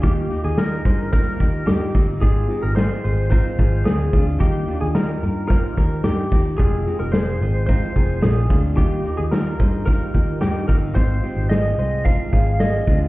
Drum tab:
HH |xxxxxxxo|xxxxxxxo|xxxxxxxo|xxxxxxxo|
SD |--o---o-|--o---o-|--o---o-|--o---o-|
BD |o--ooo-o|o---oo-o|o---oo-o|o---oo-o|

HH |xxxxxxxo|xxxxxxxo|
SD |--o---o-|--o---o-|
BD |o--ooo-o|o---oo-o|